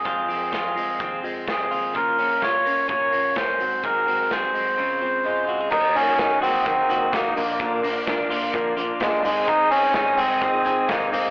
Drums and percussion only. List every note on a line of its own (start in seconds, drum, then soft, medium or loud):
0.05 kick medium
0.05 closed hi-hat medium
0.30 open hi-hat medium
0.53 kick medium
0.53 snare medium
0.53 closed hi-hat medium
0.77 open hi-hat medium
1.00 kick loud
1.00 closed hi-hat medium
1.24 open hi-hat medium
1.48 kick medium
1.48 snare loud
1.48 closed hi-hat medium
1.72 open hi-hat medium
1.95 kick medium
1.95 closed hi-hat medium
2.19 open hi-hat medium
2.42 kick medium
2.42 snare medium
2.66 open hi-hat medium
2.89 kick loud
2.89 closed hi-hat medium
3.12 open hi-hat medium
3.36 kick medium
3.36 snare loud
3.36 closed hi-hat medium
3.60 open hi-hat medium
3.84 kick medium
3.84 closed hi-hat medium
4.08 open hi-hat medium
4.31 kick medium
4.31 snare medium
4.31 closed hi-hat medium
4.55 open hi-hat medium
5.72 kick loud
5.72 crash medium
5.96 hi-hat pedal medium
5.96 open hi-hat medium
6.19 kick loud
6.19 snare loud
6.19 hi-hat pedal medium
6.19 open hi-hat medium
6.43 hi-hat pedal medium
6.43 open hi-hat medium
6.66 kick loud
6.66 hi-hat pedal medium
6.66 open hi-hat medium
6.90 hi-hat pedal medium
6.90 open hi-hat medium
7.13 kick loud
7.13 snare loud
7.13 hi-hat pedal medium
7.13 open hi-hat medium
7.37 hi-hat pedal medium
7.37 open hi-hat medium
7.60 kick loud
7.60 hi-hat pedal medium
7.60 open hi-hat medium
7.84 hi-hat pedal medium
7.84 open hi-hat medium
8.07 kick loud
8.07 snare loud
8.07 hi-hat pedal medium
8.07 open hi-hat medium
8.31 hi-hat pedal medium
8.31 open hi-hat medium
8.54 kick loud
8.54 hi-hat pedal medium
8.54 open hi-hat medium
8.77 hi-hat pedal medium
8.77 open hi-hat medium
9.00 kick loud
9.00 snare loud
9.00 hi-hat pedal medium
9.00 open hi-hat medium
9.25 hi-hat pedal medium
9.25 open hi-hat medium
9.48 kick medium
9.48 hi-hat pedal medium
9.48 open hi-hat medium
9.71 hi-hat pedal medium
9.71 open hi-hat medium
9.94 kick loud
9.94 snare loud
9.94 hi-hat pedal medium
9.94 open hi-hat medium
10.17 hi-hat pedal medium
10.17 open hi-hat medium
10.41 kick loud
10.41 hi-hat pedal medium
10.41 open hi-hat medium
10.65 hi-hat pedal medium
10.65 open hi-hat medium
10.89 kick loud
10.89 snare loud
10.89 hi-hat pedal medium
10.89 open hi-hat medium
11.13 hi-hat pedal medium
11.13 open hi-hat medium